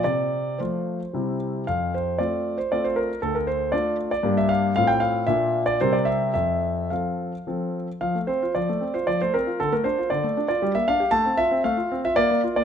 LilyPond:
\new Staff \with { instrumentName = "Grand piano" } { \time 3/4 \key f \major \tempo 4 = 115 << { d''4 c''4. r8 | f''8 c''8 d''8. c''16 d''16 c''16 bes'8 | a'16 bes'16 c''8 d''8. d''8 e''16 f''8 | f''16 g''16 f''8 e''8. d''16 c''16 d''16 e''8 |
e''4 f''4. r8 | f''8 c''8 d''8. c''16 d''16 c''16 bes'8 | a'16 bes'16 c''8 d''8. d''8 e''16 f''8 | a''8 e''8 f''8. e''16 d''8. d''16 | } \\ { c4 <f a f'>4 <c g c' e'>4 | f,4 <a c' f'>4 <a c' f'>4 | d,4 <a d' f'>4 <g, bes d' g'>4 | <a, c' f'>4 <bes, bes d' f'>4 <c g c' bes'>4 |
f,4 <f c' a'>4 <f c' a'>4 | f16 a16 c'16 f'16 f16 a16 c'16 f'16 f16 a16 c'16 f'16 | d16 a16 d'16 f'16 d16 a16 d'16 f'16 g16 bes16 d'16 g'16 | a16 c'16 f'16 c'16 a16 f'16 c'16 f'16 bes16 bes16 f'16 bes16 | } >> }